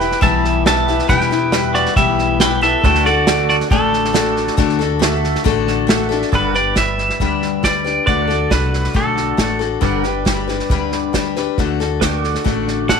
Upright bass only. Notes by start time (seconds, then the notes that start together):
Already playing: E1
0.22 B1
1.09 E1
1.96 B1
2.84 D2
3.71 A1
4.58 D2
5.46 A1
6.32 G1
7.20 D2
8.07 D2
8.51 C2
8.95 B1
9.38 A1
9.82 G1
10.70 D2
11.58 D2
12.46 A1